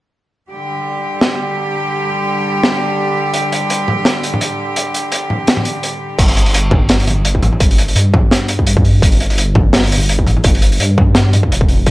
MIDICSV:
0, 0, Header, 1, 4, 480
1, 0, Start_track
1, 0, Tempo, 355030
1, 681, Time_signature, 4, 2, 24, 8
1, 16097, End_track
2, 0, Start_track
2, 0, Title_t, "Cello section"
2, 0, Program_c, 0, 48
2, 682, Note_on_c, 0, 67, 76
2, 683, Note_on_c, 0, 50, 68
2, 686, Note_on_c, 0, 55, 63
2, 8308, Note_off_c, 0, 50, 0
2, 8308, Note_off_c, 0, 67, 0
2, 8310, Note_off_c, 0, 55, 0
2, 16097, End_track
3, 0, Start_track
3, 0, Title_t, "Detuned saw bass"
3, 0, Program_c, 1, 39
3, 8363, Note_on_c, 1, 31, 95
3, 10159, Note_off_c, 1, 31, 0
3, 10282, Note_on_c, 1, 31, 97
3, 10748, Note_off_c, 1, 31, 0
3, 10761, Note_on_c, 1, 43, 82
3, 12188, Note_off_c, 1, 43, 0
3, 12200, Note_on_c, 1, 31, 99
3, 13997, Note_off_c, 1, 31, 0
3, 14122, Note_on_c, 1, 31, 98
3, 14588, Note_off_c, 1, 31, 0
3, 14602, Note_on_c, 1, 43, 84
3, 15555, Note_off_c, 1, 43, 0
3, 15563, Note_on_c, 1, 29, 88
3, 16029, Note_off_c, 1, 29, 0
3, 16042, Note_on_c, 1, 31, 100
3, 16097, Note_off_c, 1, 31, 0
3, 16097, End_track
4, 0, Start_track
4, 0, Title_t, "Drums"
4, 1641, Note_on_c, 9, 38, 101
4, 1777, Note_off_c, 9, 38, 0
4, 3563, Note_on_c, 9, 38, 115
4, 3698, Note_off_c, 9, 38, 0
4, 4510, Note_on_c, 9, 42, 82
4, 4645, Note_off_c, 9, 42, 0
4, 4765, Note_on_c, 9, 42, 71
4, 4900, Note_off_c, 9, 42, 0
4, 5002, Note_on_c, 9, 42, 82
4, 5137, Note_off_c, 9, 42, 0
4, 5245, Note_on_c, 9, 45, 45
4, 5381, Note_off_c, 9, 45, 0
4, 5477, Note_on_c, 9, 38, 105
4, 5485, Note_on_c, 9, 42, 80
4, 5612, Note_off_c, 9, 38, 0
4, 5620, Note_off_c, 9, 42, 0
4, 5725, Note_on_c, 9, 42, 68
4, 5861, Note_off_c, 9, 42, 0
4, 5863, Note_on_c, 9, 45, 49
4, 5963, Note_on_c, 9, 42, 86
4, 5999, Note_off_c, 9, 45, 0
4, 6098, Note_off_c, 9, 42, 0
4, 6439, Note_on_c, 9, 42, 83
4, 6574, Note_off_c, 9, 42, 0
4, 6684, Note_on_c, 9, 42, 65
4, 6819, Note_off_c, 9, 42, 0
4, 6918, Note_on_c, 9, 42, 83
4, 7054, Note_off_c, 9, 42, 0
4, 7167, Note_on_c, 9, 45, 41
4, 7302, Note_off_c, 9, 45, 0
4, 7400, Note_on_c, 9, 42, 76
4, 7411, Note_on_c, 9, 38, 123
4, 7529, Note_on_c, 9, 45, 66
4, 7535, Note_off_c, 9, 42, 0
4, 7546, Note_off_c, 9, 38, 0
4, 7639, Note_on_c, 9, 42, 66
4, 7665, Note_off_c, 9, 45, 0
4, 7774, Note_off_c, 9, 42, 0
4, 7885, Note_on_c, 9, 42, 79
4, 8020, Note_off_c, 9, 42, 0
4, 8363, Note_on_c, 9, 36, 115
4, 8365, Note_on_c, 9, 42, 82
4, 8367, Note_on_c, 9, 49, 99
4, 8494, Note_on_c, 9, 46, 82
4, 8498, Note_off_c, 9, 36, 0
4, 8500, Note_off_c, 9, 42, 0
4, 8502, Note_off_c, 9, 49, 0
4, 8607, Note_on_c, 9, 42, 81
4, 8629, Note_off_c, 9, 46, 0
4, 8735, Note_on_c, 9, 46, 79
4, 8742, Note_off_c, 9, 42, 0
4, 8845, Note_on_c, 9, 42, 97
4, 8870, Note_off_c, 9, 46, 0
4, 8980, Note_off_c, 9, 42, 0
4, 9075, Note_on_c, 9, 45, 78
4, 9083, Note_on_c, 9, 36, 101
4, 9210, Note_off_c, 9, 45, 0
4, 9218, Note_off_c, 9, 36, 0
4, 9313, Note_on_c, 9, 42, 98
4, 9324, Note_on_c, 9, 38, 112
4, 9448, Note_off_c, 9, 42, 0
4, 9459, Note_off_c, 9, 38, 0
4, 9460, Note_on_c, 9, 46, 69
4, 9563, Note_on_c, 9, 42, 79
4, 9566, Note_on_c, 9, 45, 39
4, 9595, Note_off_c, 9, 46, 0
4, 9699, Note_off_c, 9, 42, 0
4, 9701, Note_off_c, 9, 45, 0
4, 9800, Note_on_c, 9, 42, 84
4, 9935, Note_off_c, 9, 42, 0
4, 9936, Note_on_c, 9, 36, 60
4, 10039, Note_on_c, 9, 42, 51
4, 10039, Note_on_c, 9, 45, 60
4, 10071, Note_off_c, 9, 36, 0
4, 10174, Note_off_c, 9, 42, 0
4, 10175, Note_off_c, 9, 45, 0
4, 10175, Note_on_c, 9, 45, 35
4, 10278, Note_on_c, 9, 42, 95
4, 10281, Note_on_c, 9, 36, 117
4, 10310, Note_off_c, 9, 45, 0
4, 10414, Note_off_c, 9, 42, 0
4, 10416, Note_off_c, 9, 36, 0
4, 10421, Note_on_c, 9, 46, 69
4, 10522, Note_on_c, 9, 42, 78
4, 10557, Note_off_c, 9, 46, 0
4, 10657, Note_on_c, 9, 46, 66
4, 10658, Note_off_c, 9, 42, 0
4, 10759, Note_on_c, 9, 42, 89
4, 10792, Note_off_c, 9, 46, 0
4, 10894, Note_off_c, 9, 42, 0
4, 11000, Note_on_c, 9, 36, 106
4, 11004, Note_on_c, 9, 45, 82
4, 11135, Note_off_c, 9, 36, 0
4, 11140, Note_off_c, 9, 45, 0
4, 11239, Note_on_c, 9, 38, 116
4, 11250, Note_on_c, 9, 42, 90
4, 11374, Note_off_c, 9, 38, 0
4, 11385, Note_off_c, 9, 42, 0
4, 11470, Note_on_c, 9, 42, 86
4, 11605, Note_off_c, 9, 42, 0
4, 11613, Note_on_c, 9, 36, 63
4, 11716, Note_on_c, 9, 42, 90
4, 11749, Note_off_c, 9, 36, 0
4, 11851, Note_off_c, 9, 42, 0
4, 11853, Note_on_c, 9, 36, 107
4, 11960, Note_on_c, 9, 46, 49
4, 11988, Note_off_c, 9, 36, 0
4, 12095, Note_off_c, 9, 46, 0
4, 12199, Note_on_c, 9, 36, 122
4, 12205, Note_on_c, 9, 42, 91
4, 12330, Note_on_c, 9, 46, 68
4, 12335, Note_off_c, 9, 36, 0
4, 12340, Note_off_c, 9, 42, 0
4, 12441, Note_on_c, 9, 42, 76
4, 12465, Note_off_c, 9, 46, 0
4, 12576, Note_off_c, 9, 42, 0
4, 12576, Note_on_c, 9, 46, 73
4, 12680, Note_on_c, 9, 42, 83
4, 12711, Note_off_c, 9, 46, 0
4, 12815, Note_off_c, 9, 42, 0
4, 12915, Note_on_c, 9, 45, 80
4, 12919, Note_on_c, 9, 36, 106
4, 13050, Note_off_c, 9, 45, 0
4, 13054, Note_off_c, 9, 36, 0
4, 13155, Note_on_c, 9, 38, 119
4, 13162, Note_on_c, 9, 42, 96
4, 13199, Note_off_c, 9, 38, 0
4, 13199, Note_on_c, 9, 38, 96
4, 13237, Note_off_c, 9, 38, 0
4, 13237, Note_on_c, 9, 38, 79
4, 13296, Note_on_c, 9, 46, 71
4, 13297, Note_off_c, 9, 42, 0
4, 13325, Note_off_c, 9, 46, 0
4, 13325, Note_on_c, 9, 46, 58
4, 13353, Note_off_c, 9, 46, 0
4, 13353, Note_on_c, 9, 46, 49
4, 13372, Note_off_c, 9, 38, 0
4, 13380, Note_off_c, 9, 46, 0
4, 13380, Note_on_c, 9, 46, 40
4, 13401, Note_on_c, 9, 45, 16
4, 13406, Note_off_c, 9, 46, 0
4, 13406, Note_on_c, 9, 46, 35
4, 13412, Note_on_c, 9, 42, 83
4, 13440, Note_off_c, 9, 46, 0
4, 13440, Note_on_c, 9, 46, 27
4, 13444, Note_off_c, 9, 45, 0
4, 13444, Note_on_c, 9, 45, 21
4, 13472, Note_off_c, 9, 46, 0
4, 13472, Note_on_c, 9, 46, 23
4, 13479, Note_off_c, 9, 45, 0
4, 13479, Note_on_c, 9, 45, 27
4, 13504, Note_off_c, 9, 46, 0
4, 13504, Note_on_c, 9, 46, 18
4, 13547, Note_off_c, 9, 42, 0
4, 13615, Note_off_c, 9, 45, 0
4, 13640, Note_off_c, 9, 46, 0
4, 13643, Note_on_c, 9, 42, 84
4, 13774, Note_on_c, 9, 36, 62
4, 13778, Note_off_c, 9, 42, 0
4, 13879, Note_on_c, 9, 45, 56
4, 13887, Note_on_c, 9, 42, 55
4, 13909, Note_off_c, 9, 36, 0
4, 14014, Note_off_c, 9, 45, 0
4, 14016, Note_on_c, 9, 45, 39
4, 14022, Note_off_c, 9, 42, 0
4, 14112, Note_on_c, 9, 42, 97
4, 14121, Note_on_c, 9, 36, 122
4, 14151, Note_off_c, 9, 45, 0
4, 14247, Note_off_c, 9, 42, 0
4, 14256, Note_off_c, 9, 36, 0
4, 14260, Note_on_c, 9, 46, 80
4, 14356, Note_on_c, 9, 42, 73
4, 14396, Note_off_c, 9, 46, 0
4, 14491, Note_off_c, 9, 42, 0
4, 14494, Note_on_c, 9, 46, 67
4, 14602, Note_on_c, 9, 42, 92
4, 14629, Note_off_c, 9, 46, 0
4, 14738, Note_off_c, 9, 42, 0
4, 14842, Note_on_c, 9, 36, 104
4, 14844, Note_on_c, 9, 45, 76
4, 14977, Note_off_c, 9, 36, 0
4, 14979, Note_off_c, 9, 45, 0
4, 15072, Note_on_c, 9, 38, 123
4, 15080, Note_on_c, 9, 42, 93
4, 15207, Note_off_c, 9, 38, 0
4, 15216, Note_off_c, 9, 42, 0
4, 15320, Note_on_c, 9, 42, 80
4, 15323, Note_on_c, 9, 45, 34
4, 15455, Note_off_c, 9, 42, 0
4, 15456, Note_on_c, 9, 36, 64
4, 15458, Note_off_c, 9, 45, 0
4, 15574, Note_on_c, 9, 42, 84
4, 15591, Note_off_c, 9, 36, 0
4, 15696, Note_on_c, 9, 36, 107
4, 15709, Note_off_c, 9, 42, 0
4, 15798, Note_on_c, 9, 46, 52
4, 15831, Note_off_c, 9, 36, 0
4, 15933, Note_off_c, 9, 46, 0
4, 16040, Note_on_c, 9, 42, 84
4, 16043, Note_on_c, 9, 36, 117
4, 16097, Note_off_c, 9, 36, 0
4, 16097, Note_off_c, 9, 42, 0
4, 16097, End_track
0, 0, End_of_file